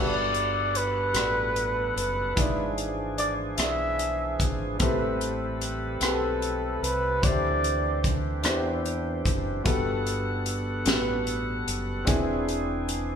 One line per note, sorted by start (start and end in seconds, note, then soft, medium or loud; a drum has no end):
0.00 1.11 G1 medium
0.00 1.12 G2 medium
0.00 2.34 G3 soft
0.00 2.34 B3 soft
0.00 0.87 F#4 medium
0.00 0.87 G4 medium
0.00 0.88 A4 medium
0.00 2.34 A4 medium
0.00 0.89 B4 medium
0.00 0.78 D5 medium
0.00 0.12 E5 soft
0.00 2.34 F#5 soft
0.00 0.12 A5 soft
0.34 closed hi-hat soft
0.75 1.97 B4 medium
0.75 closed hi-hat medium
1.13 1.92 A1 medium
1.13 2.08 F#4 soft
1.13 2.08 G4 soft
1.13 2.09 A4 soft
1.13 2.09 D5 medium
1.13 cross-stick medium
1.13 closed hi-hat medium
1.56 closed hi-hat soft
1.96 2.34 F#1 medium
1.96 2.74 B4 medium
1.96 closed hi-hat medium
2.35 3.55 G#1 medium
2.35 3.54 G#2 soft
2.35 4.77 E3 medium
2.35 4.77 F3 medium
2.35 4.77 D4 medium
2.35 3.30 E4 medium
2.35 3.30 F4 medium
2.35 4.78 G#4 medium
2.35 3.31 G#4 medium
2.35 3.31 D5 medium
2.35 kick loud
2.35 closed hi-hat medium
2.78 closed hi-hat soft
3.18 3.35 D5 medium
3.18 closed hi-hat soft
3.57 4.35 B1 medium
3.57 4.51 E4 soft
3.57 4.52 F4 soft
3.57 4.52 G#4 soft
3.57 4.53 D5 medium
3.57 4.46 E5 medium
3.57 cross-stick medium
3.57 closed hi-hat medium
3.99 closed hi-hat soft
4.40 4.77 G#1 medium
4.40 kick medium
4.40 closed hi-hat medium
4.79 5.98 A1 medium
4.79 5.98 A2 medium
4.79 7.21 G3 medium
4.79 5.73 C4 medium
4.79 9.63 C4 medium
4.79 5.74 G4 medium
4.79 5.74 A4 medium
4.79 7.21 A4 medium
4.79 7.21 B4 medium
4.79 5.75 B4 medium
4.79 kick medium
4.79 closed hi-hat medium
5.21 closed hi-hat soft
5.61 closed hi-hat medium
6.01 6.78 B1 medium
6.01 6.94 C4 medium
6.01 6.95 G4 soft
6.01 6.95 A4 soft
6.01 6.85 A4 medium
6.01 6.96 B4 medium
6.01 cross-stick medium
6.01 closed hi-hat medium
6.42 closed hi-hat soft
6.82 7.20 C2 medium
6.82 7.26 B4 medium
6.82 closed hi-hat medium
7.21 8.44 D2 medium
7.21 8.40 D3 soft
7.21 9.62 E3 medium
7.21 8.16 D4 medium
7.21 9.63 D4 medium
7.21 8.16 E4 medium
7.21 9.63 G4 medium
7.21 8.17 G4 medium
7.21 8.17 C5 medium
7.21 8.14 D5 medium
7.21 kick medium
7.21 closed hi-hat medium
7.64 closed hi-hat soft
8.04 kick medium
8.04 closed hi-hat medium
8.43 9.21 E2 medium
8.43 9.37 D4 medium
8.43 9.37 E4 medium
8.43 9.38 G4 medium
8.43 9.38 C5 medium
8.43 cross-stick medium
8.43 closed hi-hat medium
8.85 closed hi-hat soft
9.25 9.62 F#1 medium
9.25 kick medium
9.25 closed hi-hat medium
9.64 10.83 G1 medium
9.64 10.82 G2 medium
9.64 12.06 G3 medium
9.64 10.58 B3 medium
9.64 12.06 B3 medium
9.64 10.58 F#4 medium
9.64 10.59 G4 medium
9.64 12.06 A4 medium
9.64 10.59 A4 medium
9.64 12.06 F#5 soft
9.64 kick loud
9.64 closed hi-hat medium
10.06 closed hi-hat soft
10.46 closed hi-hat medium
10.85 11.63 A1 medium
10.85 11.79 B3 medium
10.85 11.79 F#4 medium
10.85 11.80 G4 medium
10.85 10.93 A4 medium
10.85 snare medium
10.85 closed hi-hat medium
10.94 11.84 B4 medium
11.27 closed hi-hat soft
11.67 12.04 F#1 medium
11.67 closed hi-hat medium
12.05 13.15 E1 medium
12.05 13.15 E3 medium
12.05 13.00 C4 medium
12.05 13.15 C4 medium
12.05 13.15 D4 medium
12.05 13.00 D4 medium
12.05 13.01 E4 medium
12.05 13.15 G#4 medium
12.05 13.01 G#4 medium
12.05 kick medium
12.05 closed hi-hat medium
12.48 closed hi-hat soft
12.89 closed hi-hat medium